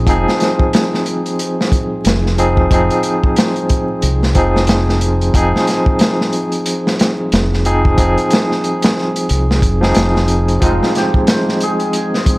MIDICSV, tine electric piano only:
0, 0, Header, 1, 2, 480
1, 0, Start_track
1, 0, Key_signature, -4, "minor"
1, 0, Tempo, 659341
1, 53, Time_signature, 4, 2, 24, 8
1, 9016, End_track
2, 0, Start_track
2, 0, Title_t, "Tine electric piano"
2, 0, Program_c, 0, 4
2, 0, Control_c, 0, 64, 127
2, 0, Note_on_c, 0, 53, 90
2, 0, Note_on_c, 0, 60, 73
2, 0, Note_on_c, 0, 63, 74
2, 0, Note_on_c, 0, 68, 96
2, 47, Note_off_c, 0, 53, 0
2, 47, Note_on_c, 0, 53, 89
2, 58, Note_off_c, 0, 60, 0
2, 58, Note_on_c, 0, 60, 78
2, 64, Note_off_c, 0, 63, 0
2, 64, Note_on_c, 0, 63, 76
2, 70, Note_off_c, 0, 68, 0
2, 70, Note_on_c, 0, 68, 98
2, 1706, Note_off_c, 0, 53, 0
2, 1711, Note_off_c, 0, 60, 0
2, 1715, Note_off_c, 0, 63, 0
2, 1718, Note_off_c, 0, 68, 0
2, 1735, Note_on_c, 0, 53, 83
2, 1738, Note_on_c, 0, 60, 85
2, 1742, Note_on_c, 0, 63, 76
2, 1746, Note_on_c, 0, 68, 95
2, 1950, Note_off_c, 0, 53, 0
2, 1952, Note_off_c, 0, 60, 0
2, 1953, Note_off_c, 0, 63, 0
2, 1955, Note_off_c, 0, 68, 0
2, 1973, Note_on_c, 0, 53, 74
2, 1979, Note_on_c, 0, 60, 66
2, 1988, Note_on_c, 0, 63, 66
2, 1995, Note_on_c, 0, 68, 75
2, 3149, Note_off_c, 0, 53, 0
2, 3152, Note_off_c, 0, 60, 0
2, 3157, Note_off_c, 0, 63, 0
2, 3160, Note_off_c, 0, 68, 0
2, 3165, Note_on_c, 0, 53, 88
2, 3170, Note_on_c, 0, 60, 80
2, 3179, Note_on_c, 0, 63, 77
2, 3186, Note_on_c, 0, 68, 97
2, 3865, Note_off_c, 0, 53, 0
2, 3868, Note_off_c, 0, 60, 0
2, 3872, Note_off_c, 0, 63, 0
2, 3875, Note_off_c, 0, 68, 0
2, 3888, Note_on_c, 0, 53, 91
2, 3892, Note_on_c, 0, 60, 83
2, 3900, Note_on_c, 0, 63, 84
2, 3907, Note_on_c, 0, 68, 100
2, 5546, Note_off_c, 0, 53, 0
2, 5549, Note_off_c, 0, 60, 0
2, 5553, Note_off_c, 0, 63, 0
2, 5556, Note_off_c, 0, 68, 0
2, 5570, Note_on_c, 0, 53, 93
2, 5573, Note_on_c, 0, 60, 87
2, 5577, Note_on_c, 0, 63, 80
2, 5580, Note_on_c, 0, 68, 101
2, 5788, Note_off_c, 0, 53, 0
2, 5789, Note_off_c, 0, 60, 0
2, 5791, Note_off_c, 0, 63, 0
2, 5792, Note_off_c, 0, 68, 0
2, 5803, Note_on_c, 0, 53, 69
2, 5810, Note_on_c, 0, 60, 65
2, 5820, Note_on_c, 0, 63, 63
2, 5827, Note_on_c, 0, 68, 81
2, 6984, Note_off_c, 0, 53, 0
2, 6988, Note_off_c, 0, 60, 0
2, 6993, Note_off_c, 0, 63, 0
2, 6996, Note_off_c, 0, 68, 0
2, 7141, Note_on_c, 0, 53, 87
2, 7150, Note_on_c, 0, 60, 81
2, 7158, Note_on_c, 0, 63, 82
2, 7165, Note_on_c, 0, 68, 94
2, 7703, Note_off_c, 0, 53, 0
2, 7707, Note_off_c, 0, 60, 0
2, 7711, Note_off_c, 0, 63, 0
2, 7714, Note_off_c, 0, 68, 0
2, 7719, Note_on_c, 0, 53, 89
2, 7727, Note_on_c, 0, 60, 84
2, 7735, Note_on_c, 0, 63, 83
2, 7741, Note_on_c, 0, 56, 99
2, 9016, Note_off_c, 0, 53, 0
2, 9016, Note_off_c, 0, 56, 0
2, 9016, Note_off_c, 0, 60, 0
2, 9016, Note_off_c, 0, 63, 0
2, 9016, End_track
0, 0, End_of_file